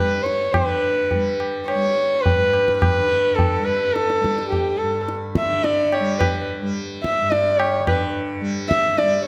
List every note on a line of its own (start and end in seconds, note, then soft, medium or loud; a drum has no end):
0.00 2.34 G2 soft
0.00 0.52 D3 soft
0.00 1.13 G3 medium
0.00 0.24 B4 medium
0.23 0.54 C#5 medium
0.23 tabla te medium
0.52 2.98 D3 medium
0.52 1.39 B4 medium
0.52 tabla na medium
0.52 tabla ge medium
1.11 1.75 G3 medium
1.11 tabla tin medium
1.11 tabla ge medium
1.40 tabla na medium
1.67 2.23 C#5 medium
1.67 tabla na medium
1.75 3.59 G3 medium
2.21 2.77 B4 medium
2.26 tabla tin medium
2.26 tabla ge medium
2.34 4.81 G2 medium
2.53 tabla na medium
2.68 tabla ke medium
2.78 3.36 B4 medium
2.82 tabla na medium
2.82 tabla ge medium
2.99 5.40 D3 medium
3.35 3.65 A4 medium
3.39 tabla tin medium
3.39 tabla ge medium
3.59 4.20 G3 medium
3.64 3.94 B4 medium
3.93 4.49 A4 medium
3.93 tabla te medium
4.10 tabla te medium
4.20 6.00 G3 medium
4.24 tabla ke medium
4.38 tabla te medium
4.49 4.79 G4 medium
4.49 tabla tin medium
4.49 tabla ge medium
4.77 5.06 A4 medium
4.81 7.21 G2 medium
5.08 tabla te medium
5.35 5.65 E5 medium
5.35 tabla ke medium
5.41 7.79 D3 medium
5.64 5.95 D5 medium
5.64 tabla te medium
5.92 6.18 C#5 medium
5.92 tabla na medium
6.00 6.62 G3 medium
6.19 6.45 B4 medium
6.19 tabla na medium
6.19 tabla ge medium
6.62 8.41 G3 medium
7.03 7.32 E5 medium
7.03 tabla ke medium
7.21 9.27 G2 medium
7.31 7.60 D5 loud
7.31 tabla te medium
7.59 7.87 C#5 medium
7.59 tabla na medium
7.80 9.27 D3 medium
7.87 8.13 B4 medium
7.87 tabla na loud
7.87 tabla ge medium
8.41 9.01 G3 medium
8.69 8.99 E5 loud
8.69 tabla ke medium
8.98 9.27 G3 medium
8.98 9.25 D5 loud
8.98 tabla te medium